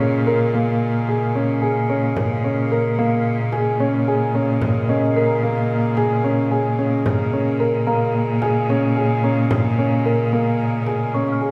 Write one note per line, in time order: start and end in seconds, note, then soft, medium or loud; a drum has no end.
0.00 2.17 A#2 loud
0.00 11.51 C#3 medium
0.00 11.51 G#3 medium
0.00 11.51 A#3 medium
0.00 0.23 C#4 medium
0.00 frame drum soft
0.27 0.50 A#4 medium
0.27 frame drum soft
0.54 1.01 A#3 medium
0.54 frame drum soft
1.09 1.32 G#4 medium
1.35 1.59 C#4 medium
1.35 frame drum soft
1.62 1.86 G#4 medium
1.62 frame drum soft
1.90 2.13 C#4 medium
1.90 frame drum soft
2.16 7.06 A#2 medium
2.16 3.11 A#4 medium
2.16 frame drum medium
2.44 2.68 C#4 medium
2.44 frame drum soft
2.72 2.95 A#4 medium
2.99 3.46 A#3 medium
3.25 frame drum soft
3.52 4.47 G#4 medium
3.52 3.76 G#4 medium
3.52 frame drum soft
3.80 4.04 C#4 medium
3.80 4.74 C#5 medium
4.08 4.31 G#4 medium
4.35 4.58 C#4 medium
4.35 frame drum soft
4.62 frame drum medium
4.89 5.13 C#4 medium
4.89 5.83 D#5 medium
4.89 frame drum soft
5.08 5.99 G#5 medium
5.16 5.40 A#4 medium
5.26 6.15 A#5 medium
5.43 5.90 A#3 medium
5.70 frame drum soft
5.97 6.21 G#4 medium
5.97 frame drum medium
6.24 6.48 C#4 medium
6.51 6.75 G#4 medium
6.79 7.02 C#4 medium
6.79 frame drum soft
7.06 11.51 A#2 loud
7.06 frame drum medium
7.33 7.57 C#4 medium
7.33 frame drum soft
7.60 7.84 A#4 medium
7.87 8.34 A#3 medium
7.87 8.81 A#5 medium
8.15 frame drum soft
8.42 8.66 G#4 medium
8.42 frame drum medium
8.70 8.93 C#4 medium
8.95 9.20 G#4 medium
8.95 9.90 G#5 medium
9.23 9.47 C#4 medium
9.23 10.18 A#5 soft
9.23 frame drum soft
9.51 frame drum medium
9.79 10.02 C#4 medium
10.05 10.29 A#4 medium
10.05 frame drum soft
10.33 10.80 A#3 medium
10.59 frame drum soft
10.87 11.11 G#4 medium
10.87 frame drum soft
11.14 11.38 C#4 medium
11.14 11.51 C#6 medium
11.14 frame drum soft
11.32 11.51 F6 soft
11.41 11.51 G#4 medium